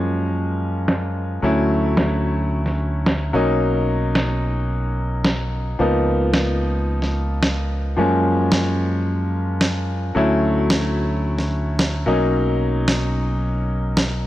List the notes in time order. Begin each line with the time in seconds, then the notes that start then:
Already playing: F#2 F3 G#3 A#3 C#4
0.88 snare
1.42 D2 F#3 A3 C#4 E4
1.97 snare
2.66 snare
3.06 snare
3.33 B1 F#3 A#3 C#4 D#4
4.15 snare
5.24 snare
5.79 C#2 F3 A#3 B3 D#4
6.33 snare
7.02 snare
7.43 snare
7.97 F#2 F3 G#3 A#3 C#4
8.52 snare
9.61 snare
10.15 D2 F#3 A3 C#4 E4
10.70 snare
11.38 snare
11.79 snare
12.06 B1 F#3 A#3 C#4 D#4
12.88 snare
13.97 snare